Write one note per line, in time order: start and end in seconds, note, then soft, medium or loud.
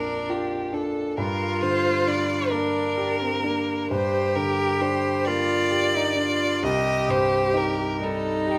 0.00 1.14 A#1 medium
0.00 1.20 F2 soft
0.00 0.55 A#3 medium
0.00 0.11 D4 medium
0.00 0.73 D4 loud
0.00 0.31 A#4 medium
0.29 1.00 F4 medium
0.29 0.75 G4 medium
0.73 1.17 D4 medium
0.73 1.18 A4 medium
1.17 3.87 G2 medium
1.17 2.52 F4 loud
1.17 1.64 A#4 medium
1.62 2.34 D3 medium
1.62 2.09 C5 medium
2.07 2.79 D4 medium
2.07 2.52 D5 medium
2.51 3.26 A#3 medium
2.51 3.24 D4 loud
2.51 3.91 A#4 medium
2.97 3.73 G4 medium
3.22 3.46 C4 loud
3.44 3.91 A#3 medium
3.44 4.18 D4 medium
3.91 6.59 G2 medium
3.91 5.29 G4 loud
3.91 4.37 C5 medium
4.36 5.08 D3 medium
4.36 4.83 A#4 medium
4.81 5.53 D4 medium
4.81 5.27 C5 medium
5.25 5.99 A#3 medium
5.25 5.98 F4 loud
5.25 6.64 D5 loud
5.71 6.44 G4 medium
5.96 6.21 D#4 loud
6.16 6.62 D4 medium
6.16 6.65 F4 loud
6.63 8.59 C2 medium
6.63 8.00 G4 loud
6.63 7.12 D#5 loud
7.08 7.82 G2 medium
7.08 7.58 C5 medium
7.53 8.29 D#4 medium
7.53 8.05 A#4 medium
8.00 8.59 G3 medium
8.00 8.59 D#4 loud
8.00 8.52 A4 medium
8.47 8.59 G4 medium